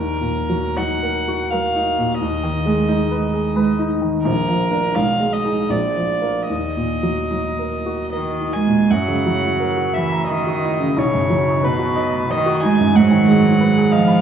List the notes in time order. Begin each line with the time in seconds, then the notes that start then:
Already playing: D#2 A#4
0.21 A#2
0.50 F#3
0.77 F#3 D#4 F#5
1.03 A#4
1.28 F#4
1.50 F#3 A#4 F5
1.76 D#4
1.99 A#2
2.20 D#2 D#5
2.43 D#3
2.66 G#3
2.88 G#3 D#4
3.11 B4
3.34 G#4
3.56 G#3 B4
3.79 D#4
4.02 D#3
4.23 A#1 F3 A#4
4.48 F3
4.71 D4 A#4
4.95 B1 G#3 F5
5.20 G#3
5.33 D#5
5.44 D#4 G#4
5.69 A#1 F3 D5
5.95 F3
6.21 F4 A#4
6.49 D#2 D#5
6.77 A#2
7.03 F#3
7.31 F#3 D#4
7.59 A#4
7.86 F#4
8.12 D#3 A#4 D#5
8.41 D#4
8.53 G#3 G#5
8.67 A#2
8.90 F#2 F#3 F#5
9.08 C#3
9.26 F#3
9.43 E4
9.60 A#4
9.77 F#4
9.93 E3 E5
10.12 A#5
10.28 D#3 D#5 E5
10.47 F#4
10.64 E4
10.80 C#3
10.97 B1 C#3 C#5
11.14 F#2
11.30 F#3
11.47 D#4
11.63 B2 B4
11.79 F#4
11.96 D#5
12.13 B5
12.30 D#3 D#5
12.46 F#4
12.62 G#3 D#4 G#5
12.79 F#2
12.95 G#2 F#3 F#5
13.11 D#3
13.28 G#3
13.44 D#4
13.60 B4
13.76 G#4
13.91 F3 D#5 F5
14.08 B5